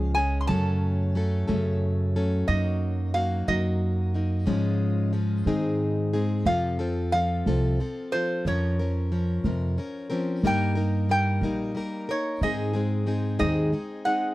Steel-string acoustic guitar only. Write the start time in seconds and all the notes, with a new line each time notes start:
Already playing: C#3 F3 G#3 C#4 G#4
0.16 G#3 C#4 G#4
0.49 F#2 C#3 F#3 A3 C#4 A4
1.15 F#3 A3 C#4 A4
1.48 F#2 C#3 F#3 A3 C#4 A4
2.16 F#3 A3 C#4 A4
2.48 F#3 A#3 D#4 F#4
3.14 F#3 A#3 D#4 F#4
3.48 F#3 A#3 D#4 F#4
4.14 A#3 D#4 F#4
4.46 G#2 C#3 F3 G#3 C#4 F4
5.13 F3 G#3 C#4 F4
5.47 G#2 D#3 G#3 C4 D#4 G#4
6.13 G#3 C4 D#4 G#4
6.46 F2 C3 F3 C4 F4 A4
6.79 F3 C4 F4 A4
7.14 F3 C4 F4 A4
7.47 F2 C3 F3 C4 F4 A4
7.79 F3 C4 F4 A4
8.13 F3 C4 F4 A4
8.46 F2 F3 C#4 A#4
8.79 F3 C#4 A#4
9.12 F3 C#4 A#4
9.45 F2 C3 F3 A#4
9.78 F3 C#4 A#4
10.10 F3 C4 C#4 A#4
10.44 G3 A#3 D#4 A#4
10.75 A#3 D#4 A#4
11.09 G3 A#3 D#4 A#4
11.43 G3 A#3 D#4 A#4
11.75 G3 A#3 D#4 A#4
12.09 A#3 D#4 A#4
12.42 G#2 D#3 G#3 C4 D#4 G#4
12.73 G#3 C4 D#4 G#4
13.06 G#3 C4 D#4 G#4
13.39 G#2 D#3 G#3 C4 D#4 G#4
13.72 G#3 C4 D#4 G#4
14.06 G#3 C4 D#4 G#4